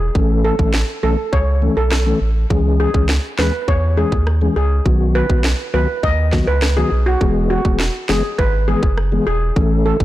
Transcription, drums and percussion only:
0.15 kick loud
0.59 kick medium
0.74 snare loud
1.33 kick medium
1.92 cross-stick medium
1.92 snare loud
2.50 kick loud
2.94 kick loud
3.09 snare loud
3.39 snare medium
3.68 kick medium
4.12 kick medium
4.27 cross-stick medium
4.86 kick loud
5.30 kick loud
5.44 snare loud
6.03 kick medium
6.33 kick loud
6.33 snare medium
6.62 cross-stick medium
6.62 snare loud
7.21 kick loud
7.65 kick loud
7.80 snare loud
8.09 snare loud
8.39 kick medium
8.83 kick medium
8.98 cross-stick medium
9.56 kick loud
10.00 kick medium

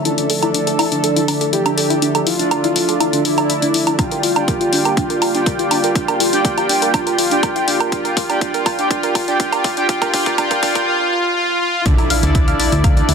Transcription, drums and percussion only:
0.05 closed hi-hat medium
0.18 closed hi-hat soft
0.30 open hi-hat loud
0.43 closed hi-hat soft
0.43 low woodblock soft
0.54 closed hi-hat medium
0.67 closed hi-hat soft
0.79 open hi-hat medium
0.79 low woodblock medium
0.92 closed hi-hat soft
1.04 closed hi-hat medium
1.16 closed hi-hat soft
1.28 open hi-hat loud
1.28 low woodblock soft
1.41 closed hi-hat soft
1.53 closed hi-hat medium
1.66 closed hi-hat soft
1.66 low woodblock medium
1.78 open hi-hat loud
1.90 closed hi-hat soft
2.02 closed hi-hat medium
2.15 closed hi-hat soft
2.15 low woodblock medium
2.27 open hi-hat loud
2.39 closed hi-hat soft
2.51 closed hi-hat medium
2.51 low woodblock medium
2.64 closed hi-hat soft
2.76 open hi-hat medium
2.89 closed hi-hat soft
3.00 closed hi-hat medium
3.00 low woodblock soft
3.13 closed hi-hat soft
3.25 open hi-hat loud
3.38 closed hi-hat soft
3.38 low woodblock medium
3.50 closed hi-hat medium
3.62 closed hi-hat soft
3.74 open hi-hat loud
3.87 closed hi-hat soft
3.87 low woodblock soft
3.99 kick loud
3.99 closed hi-hat medium
3.99 low woodblock medium
4.11 closed hi-hat soft
4.23 open hi-hat loud
4.36 closed hi-hat soft
4.36 low woodblock medium
4.48 kick loud
4.48 closed hi-hat medium
4.61 closed hi-hat soft
4.73 open hi-hat medium
4.85 closed hi-hat soft
4.85 low woodblock medium
4.97 kick loud
4.97 closed hi-hat medium
5.10 closed hi-hat soft
5.22 open hi-hat loud
5.22 low woodblock medium
5.35 closed hi-hat soft
5.46 kick loud
5.46 closed hi-hat medium
5.59 closed hi-hat soft
5.71 open hi-hat medium
5.71 low woodblock medium
5.84 closed hi-hat soft
5.95 kick loud
5.95 closed hi-hat medium
6.08 closed hi-hat soft
6.08 low woodblock medium
6.20 open hi-hat loud
6.33 closed hi-hat soft
6.45 kick loud
6.45 closed hi-hat medium
6.58 closed hi-hat soft
6.58 low woodblock medium
6.69 open hi-hat medium
6.82 closed hi-hat soft
6.94 kick loud
6.94 closed hi-hat medium
6.94 low woodblock medium
7.07 closed hi-hat soft
7.18 open hi-hat loud
7.31 closed hi-hat soft
7.43 kick loud
7.43 closed hi-hat medium
7.43 low woodblock medium
7.56 closed hi-hat soft
7.68 open hi-hat medium
7.80 closed hi-hat soft
7.80 low woodblock medium
7.92 kick loud
7.92 closed hi-hat medium
8.05 closed hi-hat soft
8.17 kick loud
8.17 open hi-hat loud
8.30 closed hi-hat soft
8.30 low woodblock medium
8.41 kick loud
8.41 closed hi-hat medium
8.54 closed hi-hat soft
8.66 kick loud
8.66 open hi-hat medium
8.66 low woodblock medium
8.79 closed hi-hat soft
8.91 kick loud
8.91 closed hi-hat medium
9.03 closed hi-hat soft
9.15 kick loud
9.15 open hi-hat loud
9.15 low woodblock medium
9.28 closed hi-hat soft
9.40 kick loud
9.40 closed hi-hat medium
9.53 closed hi-hat soft
9.53 low woodblock medium
9.64 kick loud
9.64 open hi-hat medium
9.77 closed hi-hat soft
9.89 kick loud
9.89 closed hi-hat medium
10.02 kick medium
10.02 closed hi-hat soft
10.02 low woodblock medium
10.14 kick loud
10.14 open hi-hat loud
10.26 kick medium
10.26 closed hi-hat soft
10.38 kick loud
10.38 closed hi-hat medium
10.38 low woodblock medium
10.51 kick medium
10.51 closed hi-hat soft
10.63 kick loud
10.63 open hi-hat medium
10.75 kick medium
10.75 closed hi-hat soft
11.86 kick loud
11.86 closed hi-hat medium
11.98 closed hi-hat soft
11.98 low woodblock medium
12.10 open hi-hat loud
12.23 closed hi-hat soft
12.35 kick loud
12.35 closed hi-hat medium
12.48 closed hi-hat soft
12.60 open hi-hat medium
12.72 closed hi-hat soft
12.84 kick loud
12.84 closed hi-hat medium
12.84 low woodblock medium
12.97 closed hi-hat soft
13.09 open hi-hat loud

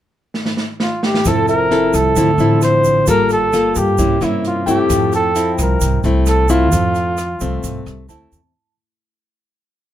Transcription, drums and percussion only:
0.34 snare soft
0.45 snare soft
0.57 snare soft
0.80 snare medium
1.03 snare medium
1.14 snare medium
1.25 kick medium
1.25 cross-stick medium
1.25 closed hi-hat soft
1.25 shaker medium
1.48 closed hi-hat soft
1.48 shaker soft
1.72 closed hi-hat soft
1.93 kick soft
1.93 cross-stick medium
1.93 closed hi-hat soft
1.93 shaker medium
2.16 kick soft
2.16 closed hi-hat soft
2.16 shaker medium
2.38 closed hi-hat soft
2.38 shaker soft
2.62 cross-stick medium
2.62 closed hi-hat soft
2.62 shaker soft
2.84 kick soft
2.84 closed hi-hat soft
2.84 shaker medium
3.07 kick medium
3.07 closed hi-hat soft
3.07 shaker medium
3.29 closed hi-hat soft
3.29 shaker soft
3.53 cross-stick medium
3.53 closed hi-hat soft
3.53 shaker soft
3.75 kick soft
3.75 closed hi-hat soft
3.75 shaker medium
3.98 kick medium
3.98 closed hi-hat soft
3.98 shaker medium
4.21 cross-stick medium
4.21 closed hi-hat soft
4.21 shaker soft
4.45 closed hi-hat soft
4.67 kick soft
4.67 closed hi-hat soft
4.67 shaker medium
4.90 kick medium
4.90 cross-stick medium
4.90 closed hi-hat soft
4.90 shaker medium
5.13 closed hi-hat soft
5.13 shaker soft
5.36 closed hi-hat soft
5.36 shaker soft
5.59 kick soft
5.59 cross-stick medium
5.59 closed hi-hat soft
5.59 shaker medium
5.81 kick soft
5.81 closed hi-hat soft
5.81 shaker medium
6.04 closed hi-hat soft
6.04 shaker soft
6.26 cross-stick medium
6.26 closed hi-hat soft
6.26 shaker soft
6.49 kick soft
6.49 closed hi-hat soft
6.49 shaker medium
6.72 kick medium
6.72 closed hi-hat soft
6.72 shaker medium
6.95 closed hi-hat soft
6.95 shaker soft
7.17 cross-stick medium
7.17 closed hi-hat soft
7.17 shaker soft
7.40 kick soft
7.40 closed hi-hat soft
7.40 shaker medium
7.63 kick medium
7.63 closed hi-hat soft
7.63 shaker medium
7.87 cross-stick soft
7.87 closed hi-hat soft
7.87 shaker soft
8.09 closed hi-hat soft
8.09 shaker soft
8.32 kick soft
8.32 closed hi-hat soft
8.32 shaker medium

